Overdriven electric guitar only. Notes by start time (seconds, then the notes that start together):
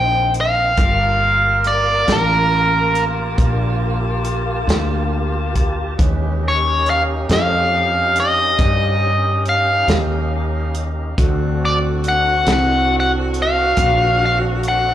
Already playing: G5
0.41 F5
1.67 D5
2.12 A#4
6.48 C#5
6.90 F5
7.33 F5
8.20 D#5
9.49 F5
11.65 D5
12.09 F#5
12.53 F#5
13.00 F#5
13.42 F5
14.26 F5
14.68 F#5